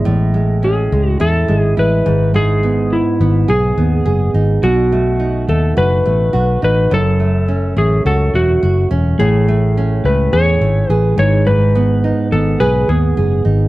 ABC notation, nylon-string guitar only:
X:1
M:4/4
L:1/8
Q:"Swing 16ths" 1/4=105
K:E
V:1 name="Nylon-string guitar"
A,, G, C G, E G, E G,, | G,, B,2 B, G B, G D | B,, A, D A, F A, F D | F,, A, C A, F A, F C |
A,, A, C A, G A, G G,, | G,, B, D B, G B, G D |]